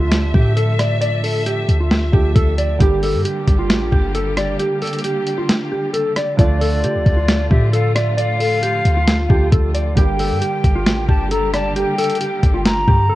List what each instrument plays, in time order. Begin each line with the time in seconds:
Already playing: 808-style bass D2, grand piano D3 F3 A3 E5, string section D3 F3 A3 E5
0.00 clean electric guitar F4
0.12 snare, closed hi-hat
0.34 808-style bass A2, clean electric guitar G4, kick
0.56 clean electric guitar A4, closed hi-hat
0.79 clean electric guitar D5, cross-stick, closed hi-hat
1.01 clean electric guitar D5, closed hi-hat
1.24 clean electric guitar A4, open hi-hat
1.46 clean electric guitar G4, closed hi-hat
1.69 808-style bass D2, closed hi-hat
1.80 clean electric guitar F4
1.91 snare, closed hi-hat
2.12 808-style bass D2, grand piano D3 F3 A3 G4, clean electric guitar G4, kick
2.35 808-style bass D2, clean electric guitar A4, kick, closed hi-hat
2.58 clean electric guitar D5, closed hi-hat
2.79 808-style bass G1, grand piano D3 G3 A#3 G4, string section G3 A#3 G4, clean electric guitar G4, kick, closed hi-hat
3.03 clean electric guitar A4, open hi-hat
3.14 808-style bass G2
3.25 clean electric guitar G4, closed hi-hat
3.48 808-style bass G1, kick, closed hi-hat
3.59 clean electric guitar F4
3.70 808-style bass A1, snare, closed hi-hat
3.92 808-style bass G1, clean electric guitar G4, kick
4.15 clean electric guitar A4, closed hi-hat
4.37 clean electric guitar D5, cross-stick, closed hi-hat
4.60 clean electric guitar G4, closed hi-hat
4.82 clean electric guitar A4, closed hi-hat, open hi-hat
4.88 closed hi-hat
4.93 closed hi-hat
4.99 closed hi-hat
5.04 clean electric guitar G4, closed hi-hat
5.27 closed hi-hat
5.38 clean electric guitar F4
5.49 snare, closed hi-hat
5.72 clean electric guitar G4
5.94 clean electric guitar A4, closed hi-hat
6.16 clean electric guitar D5, cross-stick, closed hi-hat
6.37 808-style bass D2, grand piano D3 F3 A3 F4, string section F3 A3 F4, flute D5, clean electric guitar D5, kick, closed hi-hat
6.61 clean electric guitar A4, open hi-hat
6.84 808-style bass D3, clean electric guitar G4, closed hi-hat
6.95 808-style bass D2
7.06 808-style bass D2, kick, closed hi-hat
7.17 clean electric guitar F4
7.28 snare, closed hi-hat
7.51 808-style bass A2, clean electric guitar G4, flute E5, kick
7.73 clean electric guitar A4, flute F5, closed hi-hat
7.95 clean electric guitar D5, flute E5, cross-stick, closed hi-hat
8.17 clean electric guitar D5, flute F5, closed hi-hat
8.40 clean electric guitar A4, open hi-hat
8.62 clean electric guitar G4, closed hi-hat
8.85 808-style bass D2, closed hi-hat
8.97 clean electric guitar F4
9.07 snare, closed hi-hat
9.29 808-style bass D2, grand piano D3 F3 A3 G4, clean electric guitar G4, kick
9.52 808-style bass D2, clean electric guitar A4, kick, closed hi-hat
9.74 clean electric guitar D5, closed hi-hat
9.95 808-style bass G1, grand piano D3 G3 A#3 G4, string section D3 G3 A#3 G4, clean electric guitar G4, flute G5, kick, closed hi-hat
10.19 clean electric guitar A4, open hi-hat
10.31 808-style bass G2
10.41 clean electric guitar G4, closed hi-hat
10.64 808-style bass G1, kick, closed hi-hat
10.75 clean electric guitar F4
10.86 808-style bass A1, snare, closed hi-hat
11.09 808-style bass G1, clean electric guitar G4, flute A5, kick
11.31 clean electric guitar A4, flute A#5, closed hi-hat
11.54 clean electric guitar D5, flute A5, cross-stick, closed hi-hat
11.76 clean electric guitar G4, flute G5, closed hi-hat
11.98 clean electric guitar A4, closed hi-hat, open hi-hat
12.04 closed hi-hat
12.10 closed hi-hat
12.15 closed hi-hat
12.21 clean electric guitar G4, closed hi-hat
12.43 808-style bass G1, kick, closed hi-hat
12.54 clean electric guitar F4
12.66 flute A#5, snare, closed hi-hat
12.88 808-style bass G2, clean electric guitar G4, kick
13.10 clean electric guitar A4